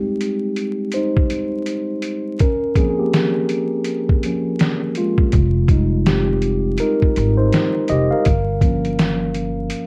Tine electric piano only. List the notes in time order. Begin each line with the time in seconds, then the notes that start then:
Already playing: G3 G#3 C4 D#4 G4
0.94 D#4 C5
2.41 C#4 A#4
2.77 F3 A#3 C4 C#4 G#4
2.90 G#4
2.99 A#3 G4
4.25 F3 A#3 C#4
4.98 G#3 F4
5.70 G3 G#3 D#4
6.07 C4 G4
6.80 D#4 A#4
7.38 D#4 C5
7.90 G4 D#5
8.11 A#4 F5
8.63 F3 A#3 C#4